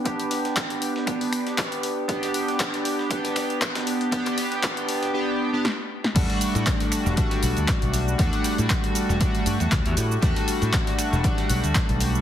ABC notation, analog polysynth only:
X:1
M:4/4
L:1/16
Q:"Swing 16ths" 1/4=118
K:Em
V:1 name="Analog polysynth"
[B,DG]8 [B,DG]8 | [B,DG]8 [B,DG]8 | [B,DG]8 [B,DG]3 [B,DG] z4 | [G,A,DF]8 [G,A,DF]8 |
[G,A,DF]8 [G,A,DF]8 | [G,A,DF]8 [G,A,DF]8 |]